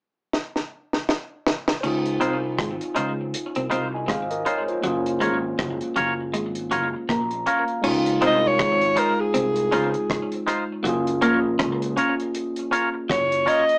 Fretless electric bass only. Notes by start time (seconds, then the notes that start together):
1.84 C#2
2.22 C2
2.59 G#1
2.97 C#2
3.57 C2
3.72 C2
4.09 G#1
4.85 F#1
5.23 G#1
5.60 F#1
5.98 F#1
6.36 G#1
6.73 F#1
7.10 A#1
7.86 C#2
8.23 C2
8.60 G#1
9.36 C2
9.74 C#2
10.86 F#1
11.24 A#1
11.60 C#2
13.10 F#1